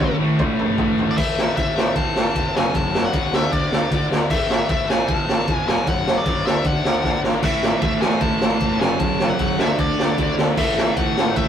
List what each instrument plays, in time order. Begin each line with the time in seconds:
Already playing: distorted electric guitar F#2 C#3 F#3 A3, lead electric guitar C#5
0.00 picked electric bass G#1, distorted electric guitar F#2 C#3 F#3
0.19 picked electric bass A1, distorted electric guitar A2 E3 A3
0.39 picked electric bass A1, kick, mid tom
0.58 picked electric bass A1, mid tom
0.77 picked electric bass A1, distorted electric guitar A2 E3 A3, kick, floor tom
0.98 picked electric bass A1, floor tom
1.11 lead electric guitar D5
1.16 picked electric bass A1, distorted electric guitar A2 E3 A3, lead electric guitar E5, kick, crash
1.38 snare
1.57 picked electric bass A1, lead electric guitar E5, kick, ride
1.75 picked electric bass A1, distorted electric guitar A2 E3 A3, snare
1.95 picked electric bass A1, lead electric guitar A5, kick, ride
2.15 picked electric bass A1, snare
2.35 picked electric bass F1, kick, ride
2.53 picked electric bass F#1, distorted electric guitar F#2 C#3 F#3, lead electric guitar G#5, snare
2.74 picked electric bass F#1, lead electric guitar A5, kick, ride
2.95 snare
3.05 lead electric guitar F#5
3.13 picked electric bass C#2, distorted electric guitar F#2 C#3 F#3, kick, ride
3.32 picked electric bass D2, distorted electric guitar D3 A3 D4, lead electric guitar E5, snare
3.52 picked electric bass D2, lead electric guitar D5, kick, ride
3.72 picked electric bass D2, snare
3.91 picked electric bass D2, distorted electric guitar D3 A3 D4, kick, ride
4.10 picked electric bass D2, snare
4.29 picked electric bass A1, distorted electric guitar A2 E3 A3, lead electric guitar E5, kick, crash
4.50 lead electric guitar E5, snare
4.69 picked electric bass A1, lead electric guitar E5, kick, ride
4.87 picked electric bass A1, distorted electric guitar A2 E3 A3, lead electric guitar G#5, snare
5.08 picked electric bass A1, lead electric guitar A5, kick, ride
5.27 picked electric bass A1, snare
5.48 picked electric bass F1, kick, ride
5.52 lead electric guitar G#5
5.66 picked electric bass F#1, distorted electric guitar F#2 C#3 F#3, lead electric guitar G#5, snare
5.87 picked electric bass F#1, lead electric guitar F#5, kick, ride
6.07 snare
6.17 lead electric guitar D5
6.25 picked electric bass F#1, distorted electric guitar F#2 C#3 F#3, kick, ride
6.44 picked electric bass D2, distorted electric guitar D3 A3 D4, lead electric guitar E5, snare
6.64 picked electric bass D2, lead electric guitar F#5, kick, ride
6.84 picked electric bass D2, snare
7.02 picked electric bass D2, distorted electric guitar D3 A3 D4, kick, snare
7.24 picked electric bass G#1, snare
7.43 picked electric bass A1, distorted electric guitar A2 E3 A3, lead electric guitar E5, kick, crash
7.63 snare
7.81 picked electric bass A1, lead electric guitar E5, kick, ride
8.01 picked electric bass A1, distorted electric guitar A2 E3 A3, lead electric guitar G#5, snare
8.21 picked electric bass A1, lead electric guitar A5, kick, ride
8.41 picked electric bass A1, snare
8.60 picked electric bass F1, kick, ride
8.80 picked electric bass F#1, distorted electric guitar F#2 C#3 F#3, lead electric guitar G#5, snare
8.99 picked electric bass F#1, lead electric guitar A5, kick, ride
9.20 snare
9.30 lead electric guitar F#5
9.37 picked electric bass F#1, distorted electric guitar F#2 C#3 F#3, kick, ride
9.57 picked electric bass D2, distorted electric guitar D3 A3 D4, lead electric guitar E5, snare
9.78 picked electric bass D2, lead electric guitar D5, kick, ride
9.99 picked electric bass D2, snare
10.17 picked electric bass D2, distorted electric guitar D3 A3 D4, kick, ride
10.38 picked electric bass D2, snare
10.56 picked electric bass A1, distorted electric guitar A2 E3 A3, lead electric guitar E5, kick, crash
10.78 snare
10.96 picked electric bass A1, lead electric guitar F#5, kick, ride
11.15 picked electric bass A1, distorted electric guitar A2 E3 A3, snare
11.36 picked electric bass A1, lead electric guitar E5, kick, ride